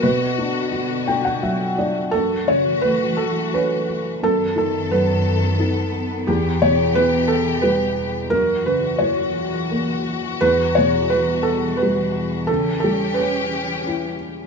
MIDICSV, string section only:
0, 0, Header, 1, 2, 480
1, 0, Start_track
1, 0, Key_signature, 2, "minor"
1, 0, Tempo, 696056
1, 24, Time_signature, 3, 2, 24, 8
1, 3384, Tempo, 681818
1, 6264, Tempo, 702576
1, 7704, Tempo, 684932
1, 10061, End_track
2, 0, Start_track
2, 0, Title_t, "String section"
2, 0, Program_c, 0, 48
2, 0, Note_on_c, 0, 66, 89
2, 25, Note_on_c, 0, 50, 69
2, 25, Note_on_c, 0, 59, 66
2, 1436, Note_off_c, 0, 66, 0
2, 1451, Note_off_c, 0, 50, 0
2, 1451, Note_off_c, 0, 59, 0
2, 1457, Note_on_c, 0, 52, 73
2, 1457, Note_on_c, 0, 66, 86
2, 1458, Note_on_c, 0, 57, 69
2, 2890, Note_off_c, 0, 52, 0
2, 2891, Note_off_c, 0, 57, 0
2, 2891, Note_off_c, 0, 66, 0
2, 2897, Note_on_c, 0, 59, 75
2, 2898, Note_on_c, 0, 69, 86
2, 2899, Note_on_c, 0, 51, 72
2, 2905, Note_on_c, 0, 42, 80
2, 4329, Note_off_c, 0, 69, 0
2, 4330, Note_off_c, 0, 51, 0
2, 4333, Note_off_c, 0, 42, 0
2, 4340, Note_on_c, 0, 67, 89
2, 4349, Note_on_c, 0, 52, 81
2, 5748, Note_off_c, 0, 59, 0
2, 5763, Note_off_c, 0, 67, 0
2, 5768, Note_off_c, 0, 52, 0
2, 5781, Note_on_c, 0, 46, 74
2, 5785, Note_on_c, 0, 66, 87
2, 5789, Note_on_c, 0, 52, 72
2, 7214, Note_off_c, 0, 46, 0
2, 7242, Note_on_c, 0, 55, 62
2, 8646, Note_off_c, 0, 66, 0
2, 8665, Note_off_c, 0, 55, 0
2, 8669, Note_on_c, 0, 61, 71
2, 8670, Note_on_c, 0, 67, 96
2, 10061, Note_off_c, 0, 52, 0
2, 10061, Note_off_c, 0, 61, 0
2, 10061, Note_off_c, 0, 67, 0
2, 10061, End_track
0, 0, End_of_file